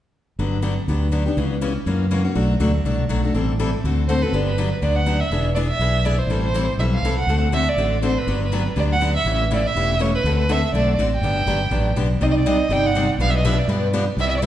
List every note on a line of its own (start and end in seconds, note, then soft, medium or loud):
0.39 0.78 G1 medium
0.39 0.57 D3 soft
0.39 0.57 F#3 medium
0.39 0.57 B3 medium
0.39 0.57 D4 medium
0.39 0.57 G4 medium
0.62 0.73 D3 medium
0.62 0.73 F#3 medium
0.62 0.73 B3 medium
0.62 0.73 D4 medium
0.62 0.73 G4 medium
0.88 1.27 D2 medium
0.88 1.06 D3 medium
0.88 1.06 F#3 medium
0.88 1.06 B3 medium
0.88 1.06 D4 medium
0.88 1.07 G4 medium
1.12 1.22 D3 medium
1.12 1.22 F#3 medium
1.12 1.22 B3 medium
1.12 1.23 D4 medium
1.12 1.23 G4 medium
1.26 1.36 B3 soft
1.26 1.37 D4 soft
1.26 1.37 G4 soft
1.37 1.76 C#2 medium
1.37 1.55 C#3 medium
1.37 1.55 E3 medium
1.37 1.55 B3 medium
1.37 1.55 C#4 medium
1.37 1.56 G4 medium
1.61 1.72 C#3 medium
1.61 1.72 E3 medium
1.61 1.72 B3 medium
1.61 1.72 C#4 medium
1.61 1.72 G4 medium
1.86 2.26 F#2 medium
1.86 2.04 C#3 medium
1.86 2.05 E3 medium
1.86 2.05 A#3 medium
1.86 2.05 C#4 medium
1.86 2.05 F#4 medium
2.11 2.21 C#3 medium
2.11 2.21 E3 medium
2.11 2.22 A#3 medium
2.11 2.21 C#4 medium
2.11 2.21 F#4 medium
2.24 2.35 A#3 soft
2.24 2.35 C#4 soft
2.24 2.34 F#4 soft
2.35 2.55 B1 medium
2.35 2.53 B2 soft
2.35 2.54 F#3 medium
2.35 2.54 A3 medium
2.35 2.54 D4 medium
2.35 2.54 F#4 medium
2.60 2.81 D2 medium
2.60 2.70 B2 medium
2.60 2.71 F#3 medium
2.60 2.70 A3 medium
2.60 2.71 D4 medium
2.60 2.70 F#4 medium
2.85 3.06 C2 medium
2.85 3.03 B2 medium
2.85 3.03 F#3 medium
2.85 3.03 A3 medium
2.85 3.03 D4 medium
2.85 3.03 F#4 medium
3.09 3.31 B1 medium
3.09 3.20 B2 medium
3.09 3.20 F#3 medium
3.09 3.20 A3 medium
3.09 3.20 D4 medium
3.09 3.20 F#4 medium
3.24 3.34 A3 soft
3.24 3.34 D4 soft
3.24 3.34 F#4 soft
3.34 3.74 A1 medium
3.34 3.52 E3 soft
3.34 3.52 G3 medium
3.34 3.52 C4 medium
3.34 3.53 E4 medium
3.34 3.53 A4 medium
3.60 3.69 E3 medium
3.60 3.69 G3 medium
3.60 3.69 C4 medium
3.60 3.70 E4 medium
3.60 3.69 A4 medium
3.84 4.23 D2 medium
3.84 4.02 D3 medium
3.84 4.02 A3 medium
3.84 4.02 C4 medium
3.84 4.03 F#4 medium
3.84 4.02 A4 medium
4.08 4.19 D3 medium
4.08 4.19 A3 medium
4.08 4.19 C4 medium
4.08 4.19 F#4 medium
4.08 4.19 A4 medium
4.08 4.23 C5 medium
4.22 4.33 C4 soft
4.22 4.33 F#4 soft
4.22 4.32 A4 soft
4.22 4.46 B4 medium
4.33 4.72 G1 medium
4.33 4.51 D3 medium
4.33 4.51 F#3 medium
4.33 4.51 B3 medium
4.33 4.52 D4 medium
4.33 4.51 G4 medium
4.47 4.70 B4 medium
4.58 4.68 D3 medium
4.58 4.68 F#3 medium
4.58 4.68 B3 medium
4.58 4.68 D4 medium
4.58 4.68 G4 medium
4.82 5.21 D2 medium
4.82 5.00 D3 medium
4.82 5.00 F#3 medium
4.82 5.00 B3 medium
4.82 5.00 D4 medium
4.82 5.00 G4 medium
4.82 4.97 D5 medium
4.96 5.21 F#5 medium
5.06 5.17 D3 medium
5.06 5.17 F#3 medium
5.06 5.17 B3 medium
5.06 5.17 D4 medium
5.06 5.17 G4 medium
5.20 5.45 E5 medium
5.31 5.70 E1 medium
5.31 5.49 E3 medium
5.31 5.49 B3 medium
5.31 5.50 D4 medium
5.31 5.50 G#4 medium
5.54 5.66 E3 medium
5.54 5.66 B3 medium
5.54 5.66 D4 medium
5.54 5.66 G#4 medium
5.54 5.61 D5 medium
5.68 6.06 E5 medium
5.79 6.19 B1 medium
5.79 5.99 E3 medium
5.79 5.99 B3 medium
5.79 5.99 D4 medium
5.79 5.99 G#4 medium
6.05 6.15 E3 medium
6.05 6.16 B3 medium
6.05 6.16 D4 medium
6.05 6.16 G#4 medium
6.05 6.20 D5 medium
6.18 6.43 C5 medium
6.27 6.68 A1 medium
6.27 6.48 E3 medium
6.27 6.48 G3 medium
6.27 6.48 C4 medium
6.27 6.48 E4 medium
6.27 6.48 A4 medium
6.44 6.67 C5 medium
6.54 6.64 E3 medium
6.54 6.65 G3 medium
6.54 6.65 C4 medium
6.54 6.65 E4 medium
6.54 6.65 A4 medium
6.78 6.99 B1 medium
6.78 6.97 E3 medium
6.78 6.97 G3 medium
6.78 6.98 C4 medium
6.78 6.98 E4 medium
6.78 6.98 A4 medium
6.78 6.85 E5 medium
6.94 7.16 F5 medium
7.02 7.24 C2 medium
7.02 7.14 E3 medium
7.02 7.15 G3 medium
7.02 7.14 C4 medium
7.02 7.14 E4 medium
7.02 7.15 A4 medium
7.19 7.41 F#5 medium
7.27 7.67 D2 medium
7.27 7.47 D3 medium
7.27 7.47 A3 medium
7.27 7.47 C4 medium
7.27 7.47 F#4 medium
7.27 7.47 A4 medium
7.52 7.63 D3 medium
7.52 7.63 A3 medium
7.52 7.63 C4 medium
7.52 7.63 F#4 medium
7.52 7.63 A4 medium
7.52 7.70 E5 medium
7.69 8.03 D5 medium
7.76 8.16 A1 medium
7.76 7.96 D3 medium
7.76 7.96 A3 medium
7.76 7.96 C4 medium
7.76 7.96 F#4 medium
7.76 7.96 A4 medium
8.02 8.12 D3 medium
8.02 8.13 A3 medium
8.02 8.13 C4 medium
8.02 8.13 F#4 medium
8.02 8.13 A4 medium
8.02 8.19 C5 medium
8.18 8.42 B4 medium
8.27 8.67 G1 medium
8.27 8.45 D3 medium
8.27 8.46 F#3 medium
8.27 8.45 B3 medium
8.27 8.45 D4 medium
8.27 8.46 G4 medium
8.43 8.65 B4 medium
8.52 8.62 D3 medium
8.52 8.62 F#3 medium
8.52 8.62 B3 medium
8.52 8.62 D4 medium
8.52 8.62 G4 medium
8.76 9.16 D2 medium
8.76 8.94 D3 medium
8.76 8.94 F#3 medium
8.76 8.94 B3 medium
8.76 8.95 D4 medium
8.76 8.95 G4 medium
8.76 8.85 D5 medium
8.92 9.14 F#5 medium
9.01 9.11 D3 medium
9.01 9.11 F#3 medium
9.01 9.11 B3 medium
9.01 9.11 D4 medium
9.01 9.12 G4 medium
9.16 9.38 E5 medium
9.25 9.64 A1 medium
9.25 9.44 C#3 medium
9.25 9.44 E3 medium
9.25 9.44 A3 medium
9.25 9.44 C#4 medium
9.25 9.44 G4 medium
9.51 9.61 C#3 medium
9.51 9.61 E3 medium
9.51 9.61 A3 medium
9.51 9.61 C#4 medium
9.51 9.61 G4 medium
9.51 9.69 D5 medium
9.67 10.03 E5 medium
9.75 10.15 E1 medium
9.75 9.93 C#3 medium
9.75 9.94 E3 medium
9.75 9.94 A3 medium
9.75 9.94 C#4 medium
9.75 9.94 G4 medium
9.99 10.10 C#3 medium
9.99 10.10 E3 medium
9.99 10.10 A3 medium
9.99 10.10 C#4 medium
9.99 10.10 G4 medium
9.99 10.14 C#5 medium
10.14 10.37 B4 medium
10.24 10.64 D2 medium
10.24 10.43 D3 medium
10.24 10.43 A3 medium
10.24 10.43 C4 medium
10.24 10.43 F#4 medium
10.24 10.43 A4 medium
10.39 10.53 B4 medium
10.49 10.59 D3 medium
10.49 10.59 A3 medium
10.49 10.59 C4 medium
10.49 10.59 F#4 medium
10.49 10.59 A4 medium
10.49 10.74 E5 medium
10.72 10.94 B1 medium
10.72 10.92 D3 medium
10.72 10.92 A3 medium
10.72 10.92 C4 medium
10.72 10.92 F#4 medium
10.72 10.92 A4 medium
10.72 10.97 D5 medium
10.98 11.19 A1 medium
10.98 11.08 D3 medium
10.98 11.09 A3 medium
10.98 11.09 C4 medium
10.98 11.09 F#4 medium
10.98 11.09 A4 medium
11.14 11.94 G5 medium
11.21 11.42 G1 medium
11.21 11.41 D3 medium
11.21 11.41 F#3 medium
11.21 11.41 B3 medium
11.21 11.41 D4 medium
11.21 11.41 G4 medium
11.46 11.68 G1 medium
11.46 11.57 D3 medium
11.46 11.58 F#3 medium
11.46 11.58 B3 medium
11.46 11.58 D4 medium
11.46 11.58 G4 medium
11.71 11.92 A1 medium
11.71 11.90 D3 medium
11.71 11.90 F#3 medium
11.71 11.90 B3 medium
11.71 11.90 D4 medium
11.71 11.90 G4 medium
11.96 12.18 B1 medium
11.96 12.07 D3 medium
11.96 12.07 F#3 medium
11.96 12.07 B3 medium
11.96 12.07 D4 medium
11.96 12.07 G4 medium
12.21 12.60 C2 medium
12.21 12.39 C3 medium
12.21 12.39 G3 medium
12.21 12.39 C4 medium
12.21 12.39 D#4 medium
12.21 12.39 G4 medium
12.21 12.39 D5 medium
12.21 12.26 D#5 medium
12.31 12.35 D#5 medium
12.38 12.49 D5 medium
12.46 12.56 C3 medium
12.46 12.56 G3 medium
12.46 12.56 C4 medium
12.46 12.56 D#4 medium
12.46 12.56 G4 medium
12.46 12.56 D5 medium
12.46 12.74 D#5 medium
12.69 13.09 G1 medium
12.69 12.88 C3 medium
12.69 12.88 G3 medium
12.69 12.89 C4 medium
12.69 12.89 D#4 medium
12.69 12.88 G4 medium
12.69 12.89 D5 medium
12.69 12.88 G5 loud
12.86 13.10 F#5 loud
12.95 13.05 C3 medium
12.95 13.05 G3 medium
12.95 13.06 C4 medium
12.95 13.06 D#4 medium
12.95 13.06 G4 medium
12.95 13.06 D5 medium
13.18 13.58 B1 medium
13.18 13.38 B2 medium
13.18 13.38 F3 medium
13.18 13.38 B3 medium
13.18 13.38 D4 medium
13.18 13.38 G4 medium
13.18 13.38 B4 medium
13.18 13.31 F5 medium
13.30 13.36 E5 medium
13.37 13.46 D#5 medium
13.45 13.55 B2 medium
13.45 13.55 F3 medium
13.45 13.55 B3 medium
13.45 13.55 D4 medium
13.45 13.55 G4 medium
13.45 13.55 B4 medium
13.45 13.60 E5 medium
13.58 13.83 D5 medium
13.68 14.08 G2 medium
13.68 13.87 B2 medium
13.68 13.87 F3 medium
13.68 13.87 B3 medium
13.68 13.87 D4 medium
13.68 13.87 G4 medium
13.68 13.87 B4 medium
13.93 14.04 B2 medium
13.93 14.04 F3 medium
13.93 14.04 B3 medium
13.93 14.04 D4 medium
13.93 14.04 G4 medium
13.93 14.04 B4 medium
14.17 14.46 C2 medium
14.17 14.36 C3 medium
14.17 14.36 G3 medium
14.17 14.37 B3 medium
14.17 14.37 E4 medium
14.17 14.37 G4 medium
14.17 14.27 E5 medium
14.28 14.35 E5 medium
14.37 14.43 D5 medium
14.42 14.46 C3 medium
14.42 14.46 G3 medium
14.42 14.46 B3 medium
14.42 14.46 E4 medium